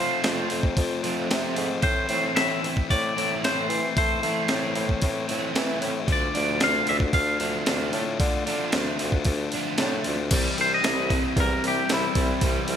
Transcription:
Already playing: bassoon F3, distorted electric guitar F3 F4, clean electric guitar C5
0.00 overdriven electric guitar F3, distorted electric guitar A3 C4
0.23 bassoon F2, distorted electric guitar F3 A3 C4 F4, snare, open hi-hat
0.48 bassoon F2, distorted electric guitar A3 C4 F4, open hi-hat
0.63 kick
0.77 bassoon F2, distorted electric guitar F3 A3 C4 F4, kick, open hi-hat
1.04 bassoon F2, overdriven electric guitar F3 A3 C4, open hi-hat
1.29 bassoon C3, distorted electric guitar F3 A3 C4 F4, snare, open hi-hat
1.55 bassoon G#2, distorted electric guitar A3 C4 F4, open hi-hat
1.82 distorted electric guitar A2 E3 A3 C4 E4, bassoon A2, clean electric guitar C5, kick, open hi-hat
2.09 bassoon A2, overdriven electric guitar E3, distorted electric guitar A3 C4 E4, open hi-hat
2.36 bassoon A2, distorted electric guitar E3 A3 C4, clean electric guitar E5, snare, open hi-hat
2.40 distorted electric guitar E4
2.62 distorted electric guitar A3 C4 E4, open hi-hat
2.77 kick
2.88 distorted electric guitar A2 E3 A3 C4 E4, bassoon A2, clean electric guitar D5, kick, open hi-hat
3.16 bassoon A2, overdriven electric guitar E3 A3 C4, open hi-hat
3.42 bassoon A2, distorted electric guitar E3 A3 C4 E4, clean electric guitar C5, snare, open hi-hat
3.69 bassoon E3, distorted electric guitar C4 E4, open hi-hat
3.73 distorted electric guitar A3
3.96 distorted electric guitar A2 E3 A3 C4 E4, bassoon A3, clean electric guitar C5, kick, open hi-hat
4.23 overdriven electric guitar E3, bassoon A3, distorted electric guitar C4 E4, open hi-hat
4.27 distorted electric guitar A3
4.48 bassoon A2, distorted electric guitar E3 A3 C4, snare, open hi-hat
4.52 distorted electric guitar E4
4.75 bassoon A2, distorted electric guitar A3 C4 E4, open hi-hat
4.89 kick
5.01 distorted electric guitar A2 E3 A3 C4 E4, bassoon A2, kick, open hi-hat
5.28 bassoon A2, overdriven electric guitar E3 A3 C4, open hi-hat
5.55 distorted electric guitar E3 A3 C4 E4, bassoon E3, snare, open hi-hat
5.81 bassoon A2, distorted electric guitar A3 C4 E4, open hi-hat
6.06 bassoon D2, distorted electric guitar D3 A3 D4 F4, kick, open hi-hat
6.12 clean electric guitar D5
6.32 bassoon D2, overdriven electric guitar F3, distorted electric guitar A3 D4 F4, open hi-hat
6.60 bassoon D2, distorted electric guitar D3 A3 D4 F4, overdriven electric guitar F3, clean electric guitar F5, snare, open hi-hat
6.87 bassoon D2, distorted electric guitar A3 D4 F4, clean electric guitar E5, open hi-hat
7.00 kick
7.13 bassoon D2, distorted electric guitar D3 A3 D4 F4, clean electric guitar F5, kick, open hi-hat
7.39 bassoon D2, overdriven electric guitar F3 A3 D4, open hi-hat
7.66 bassoon D2, distorted electric guitar D3 A3 D4 F4, overdriven electric guitar F3, snare, open hi-hat
7.93 bassoon A2, distorted electric guitar D4 F4, open hi-hat
7.97 distorted electric guitar A3
8.20 bassoon D3, distorted electric guitar D3 A3 D4 F4, kick, open hi-hat
8.46 bassoon D3, overdriven electric guitar F3, distorted electric guitar D4 F4, open hi-hat
8.50 distorted electric guitar A3
8.72 bassoon D2, distorted electric guitar D3 A3 D4 F4, overdriven electric guitar F3, snare, open hi-hat
8.99 bassoon D2, distorted electric guitar A3 D4 F4, open hi-hat
9.12 kick
9.25 bassoon D2, distorted electric guitar D3 A3 D4, kick, open hi-hat
9.29 distorted electric guitar F4
9.52 overdriven electric guitar F3 A3 D4, open hi-hat
9.78 bassoon A2, distorted electric guitar D3 A3 D4, overdriven electric guitar F3, snare, open hi-hat
9.83 distorted electric guitar F4
10.04 bassoon D2, distorted electric guitar A3 D4 F4, open hi-hat
10.31 bassoon C2, distorted electric guitar C3 E3 G3 C4 E4, kick, open hi-hat, crash
10.58 bassoon C2, overdriven electric guitar G3, clean electric guitar C5, open hi-hat
10.74 clean electric guitar D#5
10.82 bassoon C2, distorted electric guitar C3 E3 G3 C4 E4, snare, open hi-hat
11.09 distorted electric guitar G3 C4 E4, kick, open hi-hat
11.27 clean electric guitar C5
11.36 bassoon E2, overdriven electric guitar G3, kick, open hi-hat
11.40 clean electric guitar A#4
11.63 bassoon C2, overdriven electric guitar E4, open hi-hat
11.68 clean electric guitar G4
11.89 bassoon C2, distorted electric guitar E3 G3 C4 E4, snare, open hi-hat
11.94 clean electric guitar E4
12.15 bassoon C2, distorted electric guitar G3 C4 E4, kick, open hi-hat
12.41 bassoon C2, distorted electric guitar C3 E3 G3 C4 E4, kick, open hi-hat
12.68 bassoon C2, open hi-hat
12.72 overdriven electric guitar G3

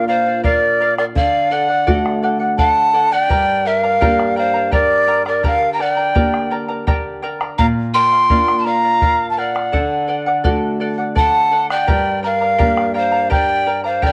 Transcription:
Already playing: nylon-string guitar A#2 A#3 D4 F4
0.08 charango A#4 D5 F5, pan flute C5, quena F5
0.26 charango D5 F5
0.44 charango A#4 D5 F5, pan flute A#4, quena D5, bombo low
0.80 charango A#4 D5 F5
0.98 pan flute A#4, quena D5, charango D5 F5, bombo rim
1.15 nylon-string guitar D3, charango A4 D5, pan flute D5, quena F5, bombo low
1.50 charango A4 D5 F#5, pan flute D5, quena F#5
1.68 charango D5 F#5
1.87 nylon-string guitar A3 D4 F#4, charango A4 D5 F#5, bombo low
2.06 bombo rim
2.23 charango A4 D5 F#5
2.40 charango D5 F#5
2.58 charango A4 D5 F#5, pan flute F#5, quena A5, bombo low
2.93 charango A4 D5 F#5
3.12 pan flute D5, charango D5 F#5, quena G5
3.29 nylon-string guitar G2, charango G4 A#4 D5 G5 A#5, bombo low
3.65 pan flute A#4, charango A#4 D5 G5 A#5, quena E5
3.80 quena F5, charango A#5
3.84 charango A#4 D5
4.01 nylon-string guitar A#3 D4 G4, charango G4 A#4 D5 G5 A#5, bombo low
4.19 bombo rim
4.36 charango A#4 D5 G5 A#5, pan flute C5, quena F5
4.54 charango A#4 D5 A#5
4.71 charango G4 A#4 D5 G5 A#5, pan flute A#4, quena D5, bombo low
5.07 charango A#4 D5 G5 A#5
5.25 charango A#4 D5 A#5, pan flute A#4, quena D5, bombo rim
5.43 nylon-string guitar D3, charango G4 A#4 D5 G5 A#5, pan flute A#4, quena F5, bombo low
5.63 bombo rim
5.73 pan flute G5, quena A#5
5.79 charango A#4 D5 G5 A#5, pan flute D5, quena F#5, bombo rim
5.92 quena G5
5.97 charango A#4 D5 A#5
6.15 nylon-string guitar A#3 D4 G4, charango G4 A#4 D5 G5 A#5, bombo low
6.34 bombo rim
6.51 charango A#4 D5 G5 A#5
6.68 charango A#4 D5 A#5
6.87 charango G4 A#4 D5 G5 A#5, bombo rim, bombo low
7.22 charango A#4 D5 G5 A#5, bombo rim
7.41 charango A#4 D5 A#5, bombo rim
7.58 nylon-string guitar A#2, charango A#4 D5 F5, pan flute F5, quena A#5, bombo low
7.94 charango A#4 D5 F5, pan flute G5, quena C6
8.12 charango D5 F5
8.30 nylon-string guitar A#3 D4 F4, charango A#4 D5 F5, bombo low
8.48 bombo rim
8.59 pan flute A5, quena C6
8.65 charango A#4 D5 F5, pan flute F5, quena A#5
8.83 charango D5 F5
9.02 charango A#4 D5 F5, bombo low
9.30 pan flute F5, quena A5
9.37 charango A#4 D5 F5, pan flute D5, quena F#5
9.55 charango D5 F5, bombo rim
9.72 nylon-string guitar D3, charango A4 D5 F#5, bombo low
10.08 charango A4 D5 F#5
10.26 charango D5 F#5
10.44 nylon-string guitar A3 D4 F#4, charango A4 D5 F#5, bombo low
10.80 charango A4 D5 F#5
10.98 charango D5 F#5
11.15 charango A4 D5 F#5, pan flute F#5, quena A5, bombo low
11.51 charango A4 D5 F#5
11.70 pan flute D5, charango D5 F#5, quena G5, bombo rim
11.87 nylon-string guitar G2, charango G4 A#4 D5 G5 A#5, bombo low
12.23 charango A#4 D5 G5 A#5, pan flute A#4, quena F5
12.41 charango A#4 D5 A#5
12.58 nylon-string guitar A#3 D4 G4, charango G4 A#4 D5 G5 A#5, bombo low
12.77 bombo rim
12.94 charango A#4 D5 G5 A#5, pan flute C5, quena F5
13.12 charango A#4 D5 A#5
13.30 charango G4 A#4 D5 G5 A#5, pan flute D5, quena G5, bombo low
13.66 charango A#4 D5 G5 A#5
13.84 charango A#4 D5 A#5, pan flute C5, quena F5
14.02 nylon-string guitar D3, charango G4 A#4 D5 G5 A#5, pan flute D5, quena G5, bombo low

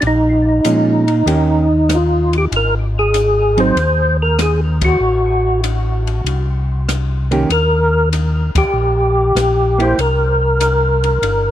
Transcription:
0.01 tonewheel organ A#1 D4, ride
0.07 tonewheel organ D#4
0.65 tonewheel organ A#2, hollow-body jazz guitar F3 G#3 C#4, hi-hat pedal, ride
1.08 ride
1.26 tonewheel organ D#2, hollow-body jazz guitar D#3 A#3 C#4 G4, ride
1.89 cross-stick, hi-hat pedal, ride
1.95 tonewheel organ F4
2.33 ride
2.38 tonewheel organ G4
2.51 tonewheel organ G#1, ride
2.56 tonewheel organ A#4
2.99 tonewheel organ G#4
3.14 hi-hat pedal, ride
3.57 hollow-body jazz guitar F#3 C4 D#4, tonewheel organ C5, ride
3.75 tonewheel organ D#2, ride
4.22 tonewheel organ A#4
4.39 tonewheel organ G#4, cross-stick, hi-hat pedal, ride
4.81 tonewheel organ F#4, kick, ride
5.00 tonewheel organ A1
5.64 hi-hat pedal, ride
6.07 ride
6.24 tonewheel organ C2, ride
6.89 cross-stick, hi-hat pedal, ride
7.31 hollow-body jazz guitar D#3 A#3 C#4 G4, ride
7.50 tonewheel organ D#2 A#4, ride
8.13 hi-hat pedal, ride
8.55 tonewheel organ D#2 G4, kick, ride
8.73 tonewheel organ A#1
9.35 tonewheel organ A#1, cross-stick, hi-hat pedal, ride
9.78 hollow-body jazz guitar A#3 E4 G4, tonewheel organ C5, ride
9.98 tonewheel organ C2 A#4, ride
10.61 hi-hat pedal, ride
11.04 ride
11.22 tonewheel organ G1, ride

